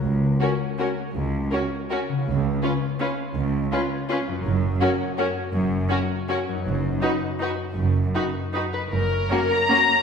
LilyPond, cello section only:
\new Staff \with { instrumentName = "Cello section" } { \clef bass \time 3/4 \key fis \major \tempo 4 = 161 cis,4 r2 | cis,4 r2 | cis,4 r2 | cis,4 r2 |
fis,4 r2 | fis,4 r2 | fis,4 r2 | fis,4 r2 |
fis,4 r2 | }